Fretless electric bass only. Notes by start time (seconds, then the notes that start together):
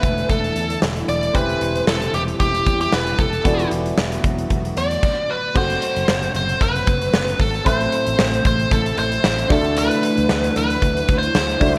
0.03 E1
0.30 E1
0.56 E2
0.82 E1
1.08 E1
1.35 E1
1.61 E1
1.87 E1
2.13 E1
2.40 E1
2.66 E2
2.93 E1
3.19 E1
3.45 E1
3.71 E1
3.98 E1
4.24 E1
4.51 E1
4.77 E2
5.56 F#1
5.96 F#1
6.08 F#1
6.34 F#1
6.61 F#1
6.87 F#1
7.14 F#1
7.40 G#1
7.66 A1
8.07 A1
8.19 A1
8.45 A1
8.71 A1
8.98 A1
9.24 A1
9.50 D2
10.18 D2
10.30 D2
10.56 D2
10.82 D2
11.09 D2
11.35 D2
11.61 C#2